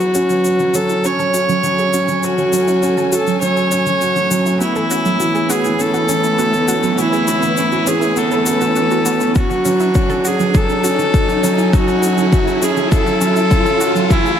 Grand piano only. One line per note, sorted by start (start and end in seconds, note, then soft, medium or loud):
0.15 0.29 C#4 medium
0.30 0.38 F#3 medium
0.45 0.59 F#4 medium
0.60 0.73 F#3 medium
0.74 0.88 F#3 medium
1.04 1.18 C#4 medium
1.19 1.27 F#3 medium
1.34 1.48 F#4 medium
1.49 1.62 F#3 medium
1.63 1.77 F#3 medium
1.93 2.07 C#4 medium
2.08 2.17 F#3 medium
2.23 2.37 F#4 medium
2.38 2.51 F#3 medium
2.53 2.67 F#3 medium
2.82 2.96 C#4 medium
2.97 3.06 F#3 medium
3.12 3.26 F#4 medium
3.27 3.40 F#3 medium
3.42 3.56 F#3 medium
3.71 3.85 C#4 medium
3.86 3.95 F#3 medium
4.01 4.15 F#4 medium
4.16 4.29 F#3 medium
4.31 4.45 F#3 medium
4.60 4.75 B3 medium
4.75 4.84 E3 medium
4.90 5.04 C#4 medium
5.05 5.18 E3 medium
5.20 5.34 E3 medium
5.49 5.64 B3 medium
5.64 5.73 E3 medium
5.79 5.93 C#4 medium
5.93 6.07 E3 medium
6.09 6.23 E3 medium
6.38 6.53 B3 loud
6.54 6.62 E3 medium
6.68 6.82 C#4 medium
6.83 6.97 E3 medium
6.98 7.12 E3 medium
7.28 7.42 B3 medium
7.43 7.51 E3 medium
7.57 7.72 C#4 medium
7.72 7.85 E3 medium
7.87 8.01 E3 medium
8.17 8.31 B3 medium
8.31 8.40 E3 medium
8.46 8.61 C#4 medium
8.61 8.74 E3 medium
8.76 8.90 E3 loud
9.06 9.20 B3 medium
9.21 9.29 E3 medium
9.36 9.50 F#4 medium
9.51 9.64 F#3 medium
9.65 9.79 F#3 medium
9.95 10.09 C#4 medium
10.10 10.18 F#3 medium
10.25 10.39 F#4 medium
10.40 10.53 F#3 medium
10.54 10.69 F#3 medium
10.84 10.98 C#4 medium
10.99 11.07 F#3 medium
11.14 11.28 F#4 medium
11.29 11.42 F#3 medium
11.44 11.58 F#3 loud
11.73 11.87 C#4 medium
11.88 11.97 F#3 medium
12.03 12.17 F#4 medium
12.17 12.31 F#3 medium
12.32 12.47 F#3 medium
12.62 12.76 C#4 medium
12.77 12.85 F#3 medium
12.92 13.06 F#4 medium
13.06 13.20 F#3 medium
13.21 13.36 F#3 medium
13.51 13.65 C#4 loud
13.66 13.75 F#3 medium
13.81 13.95 F#4 medium
13.96 14.10 F#3 medium
14.11 14.25 E3 loud